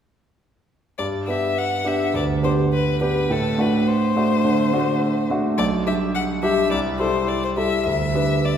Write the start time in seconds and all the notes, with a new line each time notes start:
0.98 G2 D5
1.27 B3 D4 G4 E5
1.58 F#5
1.85 B3 D4 G4 E5
2.14 D2 D5
2.43 B3 D4 G4 C5
2.73 B4
3.01 B3 D4 G4 B4
3.30 A2 A4
3.58 A3 D4 F#4 B4
3.87 C5
4.16 A3 D4 F#4
4.45 D3
4.73 A3 D4 F#4
5.30 A3 D4 F#4
5.58 B1 D5
5.87 G3 D4 G4 E5
6.15 F#5
6.43 G3 D4 G4 E5
6.71 C2 D5
6.99 G3 E4 A4 C5
7.28 D5
7.44 C5
7.57 G3 E4 A4 E5
7.86 D2 E5
8.15 G3 D4 B4
8.45 D5